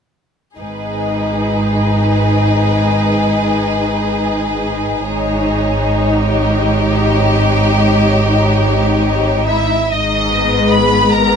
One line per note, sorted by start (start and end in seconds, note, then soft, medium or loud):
0.57 5.02 G#1 soft
0.57 5.02 G#2 soft
0.57 5.02 D#4 soft
0.57 6.15 G#4 soft
0.57 5.03 B4 soft
5.05 9.67 G#1 soft
5.05 9.66 G#2 soft
5.05 9.67 D#4 soft
5.05 9.45 C#5 soft
6.20 9.48 G4 soft
9.46 9.89 E4 soft
9.46 9.88 E5 soft
9.91 10.99 G#1 soft
9.91 10.99 G#2 soft
9.91 10.73 D#4 soft
9.91 10.73 D#5 soft
10.33 11.36 G#3 soft
10.33 11.36 B3 soft
10.71 11.13 B4 soft
10.71 11.12 B5 soft
11.11 11.36 G#1 soft
11.11 11.36 G#2 soft
11.11 11.36 A#4 soft
11.11 11.36 A#5 soft